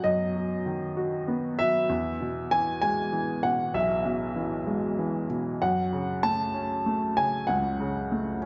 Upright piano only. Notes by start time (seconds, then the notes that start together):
Already playing: B2 F#3 D#4 F#4
0.04 F#2
0.36 F#3
0.66 D#3
0.97 F#4
1.28 B3
1.59 F#3
1.89 E2
2.21 B2
2.51 E3
2.82 G#3
3.12 E3
3.44 B2
3.74 B1
4.05 B2
4.36 E3
4.67 G#3
4.99 E3
5.30 B2
5.62 F#2
5.93 C#3
6.23 A3
6.54 C#4
6.86 A3
7.18 C#3
7.49 C#2
7.80 C#3
8.12 A3
8.42 C#4